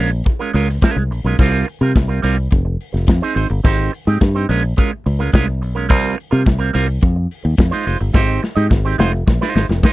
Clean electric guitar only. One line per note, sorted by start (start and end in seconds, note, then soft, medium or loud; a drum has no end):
0.00 0.10 G#3 medium
0.00 0.11 C#4 medium
0.00 0.10 F4 medium
0.11 muted clean electric guitar stroke soft
0.26 muted clean electric guitar stroke soft
0.39 0.51 G#3 medium
0.39 0.51 C#4 medium
0.39 0.50 F4 medium
0.39 0.50 A#4 medium
0.54 0.67 G#3 medium
0.54 0.68 C#4 medium
0.54 0.68 F4 loud
0.54 0.68 A#4 medium
0.69 muted clean electric guitar stroke soft
0.82 1.02 G#3 medium
0.82 0.98 C#4 medium
0.82 0.97 F4 medium
0.82 0.96 A#4 medium
0.97 muted clean electric guitar stroke medium
1.11 muted clean electric guitar stroke soft
1.25 1.36 G#3 medium
1.25 1.36 C#4 medium
1.25 1.36 F4 medium
1.25 1.35 A#4 medium
1.40 1.65 G3 medium
1.40 1.66 C4 medium
1.40 1.66 F4 loud
1.40 1.66 A#4 medium
1.67 muted clean electric guitar stroke soft
1.81 1.92 G3 medium
1.81 1.92 C4 medium
1.81 1.92 F4 medium
1.81 1.92 A#4 medium
1.95 muted clean electric guitar stroke soft
2.08 2.20 G3 medium
2.08 2.20 C4 medium
2.08 2.20 F4 medium
2.08 2.19 A#4 medium
2.22 2.36 G3 medium
2.22 2.37 C4 medium
2.22 2.37 F4 loud
2.22 2.36 A#4 medium
2.51 muted clean electric guitar stroke soft
2.65 muted clean electric guitar stroke medium
2.93 muted clean electric guitar stroke soft
3.07 muted clean electric guitar stroke medium
3.22 3.34 C4 medium
3.22 3.34 D#4 medium
3.22 3.35 G#4 medium
3.22 3.35 C5 medium
3.35 3.46 C4 medium
3.35 3.46 D#4 medium
3.35 3.47 G#4 medium
3.35 3.47 C5 medium
3.64 3.90 C4 medium
3.64 3.90 D#4 loud
3.64 3.91 G4 loud
3.64 3.91 C5 loud
3.92 muted clean electric guitar stroke soft
4.07 4.18 C4 medium
4.07 4.18 D#4 medium
4.07 4.17 G4 medium
4.07 4.17 D#5 medium
4.20 muted clean electric guitar stroke soft
4.35 4.46 C4 medium
4.35 4.45 D#4 medium
4.35 4.45 G4 medium
4.35 4.45 C5 medium
4.49 4.62 G#3 medium
4.49 4.63 C#4 medium
4.49 4.63 F4 medium
4.49 4.62 A#4 medium
4.63 muted clean electric guitar stroke medium
4.77 4.90 G#3 medium
4.77 4.91 C#4 medium
4.77 4.91 F4 medium
4.77 4.91 A#4 loud
4.92 muted clean electric guitar stroke soft
5.06 muted clean electric guitar stroke soft
5.19 5.30 G#3 medium
5.19 5.30 C#4 medium
5.19 5.30 F4 medium
5.19 5.29 A#4 medium
5.33 5.47 G#3 loud
5.33 5.47 C#4 medium
5.33 5.46 F4 loud
5.33 5.46 A#4 loud
5.47 muted clean electric guitar stroke medium
5.62 muted clean electric guitar stroke soft
5.75 5.86 G#3 medium
5.75 5.86 C#4 medium
5.75 5.86 F4 medium
5.75 5.86 A#4 medium
5.89 6.15 G3 loud
5.89 6.15 C4 loud
5.89 6.16 F4 loud
5.89 6.16 A#4 loud
6.17 muted clean electric guitar stroke soft
6.31 6.42 G3 medium
6.31 6.42 C4 medium
6.31 6.42 F4 medium
6.31 6.42 A#4 medium
6.46 muted clean electric guitar stroke soft
6.59 6.70 G3 medium
6.59 6.70 C4 medium
6.59 6.70 F4 medium
6.59 6.69 A#4 medium
6.73 6.87 G3 medium
6.73 6.87 C4 medium
6.73 6.87 F4 medium
6.73 6.87 A#4 loud
6.88 muted clean electric guitar stroke soft
7.02 muted clean electric guitar stroke soft
7.16 muted clean electric guitar stroke medium
7.44 muted clean electric guitar stroke soft
7.58 muted clean electric guitar stroke soft
7.71 7.85 G#3 medium
7.71 7.85 D#4 medium
7.71 7.85 F4 medium
7.71 7.85 C5 loud
7.86 7.96 G#3 medium
7.86 7.97 D#4 medium
7.86 7.97 F4 medium
7.86 7.97 C5 medium
8.14 8.40 C4 medium
8.14 8.40 D#4 loud
8.14 8.40 G4 loud
8.14 8.41 C5 loud
8.42 muted clean electric guitar stroke medium
8.56 8.67 C4 medium
8.56 8.67 D#4 medium
8.56 8.67 G4 medium
8.56 8.66 D#5 medium
8.69 muted clean electric guitar stroke soft
8.85 8.96 C4 medium
8.85 8.95 D#4 medium
8.85 8.95 G4 medium
8.85 8.95 C5 medium
8.98 9.11 G#3 medium
8.98 9.12 D#4 loud
8.98 9.12 F4 loud
8.98 9.12 C5 loud
9.13 muted clean electric guitar stroke medium
9.27 muted clean electric guitar stroke medium
9.41 9.53 G#3 medium
9.41 9.54 D#4 medium
9.41 9.55 F4 medium
9.41 9.55 C5 medium
9.55 9.65 G#3 medium
9.55 9.65 D#4 medium
9.55 9.65 F4 medium
9.55 9.66 C5 medium
9.83 9.93 G#3 medium
9.83 9.93 D#4 loud
9.83 9.93 F4 loud
9.83 9.93 C5 loud